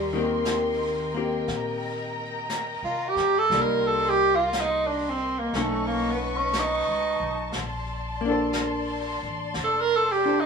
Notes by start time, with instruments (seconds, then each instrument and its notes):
Already playing: upright bass D#2, tenor saxophone G3, string section A#4 D#5 G5 C6
0.13 hollow-body jazz guitar D#3 A#3 C4
0.18 hollow-body jazz guitar G4
0.45 brush sweep, snare, hi-hat pedal
1.14 hollow-body jazz guitar A#3 C4 G4
1.47 upright bass A#2, string section A#5, brush sweep, snare
2.49 brush sweep, snare, hi-hat pedal
2.82 upright bass C3, tenor saxophone F4
3.09 tenor saxophone G4
3.16 upright bass G2, snare
3.39 tenor saxophone A4
3.50 upright bass C2, hollow-body jazz guitar G3, string section C6, brush sweep, snare
3.54 hollow-body jazz guitar A#3 D#4
3.62 tenor saxophone A#4
3.88 tenor saxophone A4
4.09 tenor saxophone G4
4.35 tenor saxophone F4
4.53 brush sweep, snare, hi-hat pedal
4.60 tenor saxophone D#4
4.87 tenor saxophone D4
5.09 tenor saxophone C4
5.39 tenor saxophone A#3
5.53 upright bass B1, hollow-body jazz guitar A3 C#4 D#4, string section B4 A5 C#6, brush sweep, snare
5.63 tenor saxophone A3
5.87 tenor saxophone A#3
6.11 tenor saxophone B3
6.37 tenor saxophone C#4
6.53 brush sweep, snare, hi-hat pedal
6.60 tenor saxophone D#4
6.87 upright bass C#2
7.20 upright bass B1
7.52 upright bass A#1, string section D5 C6, brush sweep, snare
8.21 hollow-body jazz guitar A#3
8.25 hollow-body jazz guitar D4 A4
8.32 hollow-body jazz guitar C5
8.53 brush sweep, snare, hi-hat pedal
9.23 upright bass A1
9.54 upright bass F1, brush sweep, snare
9.64 tenor saxophone A4
9.81 tenor saxophone A#4
9.97 tenor saxophone A4
10.12 tenor saxophone G4
10.26 hollow-body jazz guitar D4 A4 C5
10.40 tenor saxophone D#4